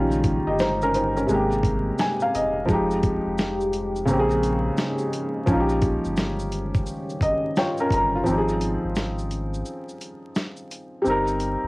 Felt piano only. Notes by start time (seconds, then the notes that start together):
Already playing: D#3 G3 C#4 F4
0.47 G4 D#5
0.60 D#4 C5
0.83 C#4 A#4
0.95 D#4 C5
1.16 C#4 A#4
1.27 C3 G#3
1.32 A#3 G4
2.00 G#5
2.22 F5
2.35 D#5
2.66 F3 G#3
2.71 D#4 G4
4.05 C#3 A#3
4.10 C4 G4
4.19 G#4
5.46 F3 C#4
5.51 D#4 F4
5.60 G4
7.22 D#5
7.57 F4 C#5 G5
7.80 C#4 A#4
7.94 A#5
8.15 F4
8.24 F3 C4
8.29 D#4 G4
8.38 G#4
11.02 G3 C4
11.07 D#4 A#4